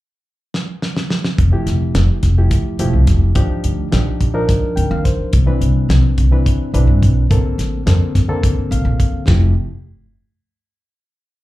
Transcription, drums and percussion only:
0.54 snare medium
0.82 snare medium
0.97 snare medium
1.10 snare medium
1.24 snare medium
1.38 kick loud
1.38 closed hi-hat medium
1.67 snare soft
1.67 closed hi-hat medium
1.95 snare loud
1.95 closed hi-hat medium
2.23 kick medium
2.23 snare soft
2.23 closed hi-hat medium
2.51 kick loud
2.51 closed hi-hat medium
2.79 closed hi-hat medium
3.07 kick medium
3.07 snare soft
3.07 closed hi-hat medium
3.35 kick loud
3.35 closed hi-hat medium
3.64 closed hi-hat medium
3.92 snare medium
3.92 closed hi-hat medium
4.21 kick medium
4.21 closed hi-hat medium
4.49 kick loud
4.49 snare soft
4.49 closed hi-hat medium
4.77 closed hi-hat soft
5.05 kick medium
5.05 snare soft
5.05 closed hi-hat medium
5.33 kick loud
5.33 closed hi-hat medium
5.62 closed hi-hat soft
5.90 snare medium
5.90 closed hi-hat medium
6.18 kick medium
6.18 closed hi-hat medium
6.46 kick medium
6.46 closed hi-hat medium
6.74 closed hi-hat soft
7.03 kick medium
7.03 closed hi-hat medium
7.31 kick loud
7.31 closed hi-hat medium
7.59 snare soft
7.59 closed hi-hat medium
7.87 snare medium
7.87 closed hi-hat medium
8.15 kick medium
8.15 snare soft
8.15 closed hi-hat medium
8.44 kick loud
8.44 closed hi-hat medium
8.72 closed hi-hat soft
9.00 kick medium
9.00 closed hi-hat medium
9.28 kick medium
9.28 snare medium
9.28 ride bell medium

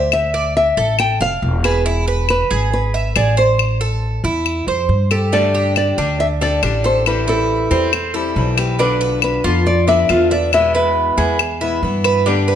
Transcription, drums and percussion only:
0.12 claves medium
0.99 claves medium
1.64 claves medium
2.29 claves medium
3.16 claves medium
3.59 claves medium
4.46 claves medium
5.11 claves medium
5.76 claves medium
6.63 claves medium
7.06 claves medium
7.93 claves medium
8.58 claves medium
9.22 claves medium
10.09 claves medium
10.53 claves medium
11.39 claves medium
12.04 claves medium

